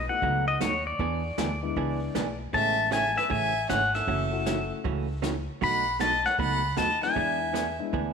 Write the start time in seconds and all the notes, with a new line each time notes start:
Already playing: D#5
0.09 A3 B3 D#4 F#4 F#5
0.22 C#2 B2 F#3 A3 D#4 F#4, brush sweep, kick
0.48 D#5
0.60 D#2 B2 F#3 A3 D#4 F#4 C#5, snare, hi-hat pedal
0.87 D5
0.99 E2 E3 B3 D4 G#4, brush sweep, kick
1.38 D2 E3 B3 D4 G#4, snare, hi-hat pedal
1.63 G#3 B3 D4 E4
1.76 C#2 E3 B3 D4 G#4, brush sweep, kick
2.15 B1 E3 B3 D4 G#4, snare, hi-hat pedal
2.53 A1 C#3 E3 G#3 A3 B3 C#4 G#4 E5 A5, brush sweep, kick
2.91 C#3 E3 A3 C#4 G#4 E5 G#5, snare, hi-hat pedal
3.17 B4 E5, snare
3.29 A1 C#3 E3 A3 C#4 G#4 E5 G#5, brush sweep, kick
3.69 G#1 C#3 E3 A3 C#4 G#4 C#5 F#5, snare, hi-hat pedal
3.94 A4 E5, snare
4.07 F#1 C#3 E3 A3 C#4 F#4, brush sweep, kick
4.32 A3 C#4 E4 F#4
4.46 C#3 E3 A3 C#4 F#4, snare, hi-hat pedal
4.84 C#2 C#3 E3 A3 C#4 F#4, brush sweep, kick
5.22 C#3 E3 A3 C#4 F#4, snare, hi-hat pedal
5.61 B1 B2 F#3 A3 D#4 F#4 F#5 B5, brush sweep, kick
6.00 B2 F#3 A3 D#4 F#4 D#5 A5, snare, hi-hat pedal
6.25 C#5 F#5, snare
6.38 C#2 B2 F#3 A3 D#4 F#4 F#5 B5, brush sweep, kick
6.77 D#2 B2 F#3 A3 D#4 F#4 D#5 A5, snare, hi-hat pedal
7.02 G#3 B3 D4 E4 E5 G#5, snare
7.16 E2 E3 B3 D4 G#4, brush sweep, kick
7.53 E3 B3 D4 G#4, snare, hi-hat pedal
7.80 G#3 B3 D4 E4
7.93 D2 E3 B3 D4 G#4, brush sweep, kick